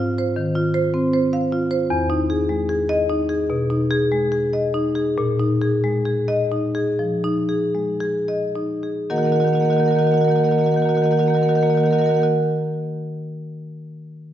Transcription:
Already playing: G#2 F5
0.00 F4
0.18 C5
0.36 D#3
0.55 F4
0.74 C5
0.94 C4
1.13 C5
1.33 F5
1.52 F4
1.71 C5
1.90 E2
2.10 D#4
2.30 G#4
2.49 G#3
2.69 G#4
2.89 D#5
3.09 D#4
3.29 G#4
3.50 B2
3.70 D#4
3.91 G#4
4.12 G#3
4.32 G#4
4.53 D#5
4.74 D#4
4.95 G#4
5.18 A#2
5.39 D#4
5.62 G#4
5.84 G#3
6.05 G#4
6.28 D#5
6.52 D#4
6.75 G#4
6.99 F3
7.24 D#4
7.49 G#4
7.75 G#3
8.00 G#4
8.28 D#5
8.55 D#4
8.83 G#4
9.10 D#3 A#3 F#4 A#4 D#5 F#5
9.16 D#3 A#3 F#4 A#4 D#5 F#5
9.23 F#4 A#4 D#5 F#5
9.27 D#3 A#3 F#5
9.32 D#3 F#4 A#4 D#5 F#5
9.36 A#3 D#5
9.40 A#3 F#4 A#4 F#5
9.45 D#3 F#4 D#5 F#5
9.49 A#3 A#4
9.53 D#3 F#4 A#4 D#5 F#5
9.60 D#3 A#3 F#4 D#5 F#5
9.65 A#4 F#5
9.69 D#3 A#3 F#4 A#4 D#5 F#5
9.77 D#3 A#3 F#4 A#4 D#5 F#5
9.83 A#3 F#4 D#5 F#5
9.88 D#3 F#4 A#4
9.92 A#3 A#4 D#5 F#5
9.97 D#3 F#4 D#5 F#5
10.02 D#3 A#3 A#4 F#5
10.07 F#4 A#4 D#5
10.11 D#3 A#3 F#4 D#5 F#5
10.17 D#3 A#3 A#4 D#5 F#5
10.21 F#4 A#4 F#5
10.28 D#3 A#3 F#4 A#4 D#5 F#5
10.35 A#3 F#4 A#4 D#5 F#5
10.40 D#3 A#3
10.44 F#4 A#4 D#5 F#5
10.49 D#3 A#3 F#4 D#5 F#5
10.55 D#3 F#4 A#4 F#5
10.59 A#3 D#5
10.64 D#3 F#4 A#4 D#5 F#5
10.69 A#3 A#4 F#5
10.74 D#3 A#3 F#4 D#5 F#5
10.80 F#4 A#4 D#5
10.84 D#3 A#3 A#4 F#5
10.89 F#4 D#5 F#5
10.94 D#3 A#3 F#4 A#4 D#5 F#5
11.02 D#3 A#3 F#4 A#4 D#5 F#5
11.11 D#3 A#3 F#4 A#4 D#5 F#5
11.17 D#3 A#3 F#4 A#4 D#5 F#5
11.23 F#4 D#5 F#5
11.27 D#3 A#3 A#4 F#5
11.34 A#3 F#4 A#4 D#5 F#5
11.39 D#3 F#4 A#4 D#5
11.43 A#3 F#5
11.48 D#3 F#4 A#4 D#5 F#5
11.53 A#3 F#4 D#5 F#5
11.57 D#3 A#4 F#5
11.63 D#3 A#3 F#4 D#5
11.67 A#3 F#4 A#4 D#5 F#5
11.73 D#3 A#4 D#5 F#5
11.78 A#3 F#4 F#5
11.83 D#3 A#3 F#4 A#4 D#5 F#5
11.91 D#3 F#4 A#4 D#5 F#5
11.95 A#3 A#4 F#5
11.99 D#3 F#4 D#5
12.04 A#3 A#4 D#5 F#5
12.09 D#3 A#3 F#4 F#5
12.14 F#4 A#4 D#5 F#5
12.19 D#3 A#3 A#4
12.23 F#4 D#5 F#5

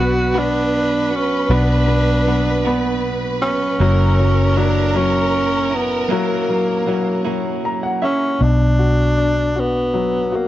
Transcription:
Already playing: B1 F#3 B3 D4 F#4 B4
0.00 B3
0.34 B2 F#3 B3 D4 F#4
0.39 D4
1.11 B3 F#4
1.15 C#4
1.50 B1 B2 F#3 B3 D4 F#4
1.88 B3
2.26 F#3 B3 D4 F#4
2.65 B2 F#3 B3 D4 F#4
3.41 B3 C#4 F#4
3.80 F#1 F#3 A#3 C#4 E4 A#4
4.20 F#3
4.56 F#3 A#3 D4 E4
4.95 F#3 A#3 C#4 E4
5.70 C#4 E4
5.75 B3
6.09 F#3 A#3 C#4 E4
6.13 A#3
6.49 F#3
6.87 F#3 A#3 C#4 E4
7.25 F#3 A#3 C#4 E4
7.65 A#5
7.83 F#5
8.02 A#3 C#4 E4 E5
8.41 B1 B2 D4
8.79 F#4
9.17 D4
9.56 B3 F#4
9.94 F#3
10.32 A#3 F#4

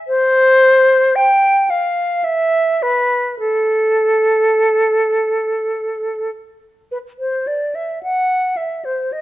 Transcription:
0.08 C5
1.16 G5
1.70 F5
2.24 E5
2.83 B4
3.40 A4
6.91 B4
7.19 C5
7.47 D5
7.75 E5
8.03 F#5
8.57 E5
8.85 C5
9.12 D#5

